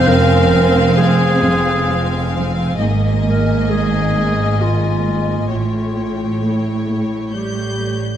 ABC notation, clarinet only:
X:1
M:3/4
L:1/8
Q:1/4=66
K:Fm
V:1 name="Clarinet"
B2 A4 | z B A2 F2 | F2 =E2 G2 |]